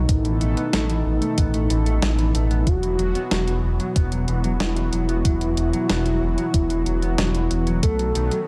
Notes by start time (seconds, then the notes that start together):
Already playing: D#4
0.09 A1 B2 E3 A3 B3 A4, kick, closed hi-hat
0.25 E3, closed hi-hat
0.41 A1 A3, closed hi-hat
0.57 B3, closed hi-hat
0.73 A1 A3, snare, closed hi-hat
0.89 E3, closed hi-hat
1.05 A1
1.22 A3, closed hi-hat
1.38 A1 B3, kick, closed hi-hat
1.54 A3, closed hi-hat
1.70 A1 E3, closed hi-hat
1.86 A3, closed hi-hat
2.02 A1, snare, closed hi-hat
2.19 E3, closed hi-hat
2.34 A1 A3, closed hi-hat
2.51 B3, closed hi-hat
2.67 E1 B2 F#3 F#4, kick, closed hi-hat
2.83 E3, closed hi-hat
2.99 E1 F#3, closed hi-hat
3.15 B3, closed hi-hat
3.31 E1 F#3, snare, closed hi-hat
3.48 E3, closed hi-hat
3.63 E1
3.80 F#3, closed hi-hat
3.96 E1 B3, kick, closed hi-hat
4.12 F#3, closed hi-hat
4.28 E1 E3, closed hi-hat
4.44 F#3, closed hi-hat
4.60 E1 E4, snare, closed hi-hat
4.76 E3, closed hi-hat
4.92 E1 F#3, closed hi-hat
5.09 B3, closed hi-hat
5.25 E1 F#3, kick, closed hi-hat
5.41 E3, closed hi-hat
5.57 E1, closed hi-hat
5.73 F#3, closed hi-hat
5.89 E1 B3, snare, closed hi-hat
6.06 F#3, closed hi-hat
6.22 E1 E3
6.38 F#3, closed hi-hat
6.54 E1, kick, closed hi-hat
6.70 E3, closed hi-hat
6.86 E1 F#3, closed hi-hat
7.02 B3, closed hi-hat
7.18 E1 F#3, snare, closed hi-hat
7.35 E3, closed hi-hat
7.51 E1, closed hi-hat
7.67 F#3, closed hi-hat
7.83 B1 D#3 A3 B3 A4, kick, closed hi-hat
7.99 F#3, closed hi-hat
8.15 B1 D#3, closed hi-hat
8.31 F#3, closed hi-hat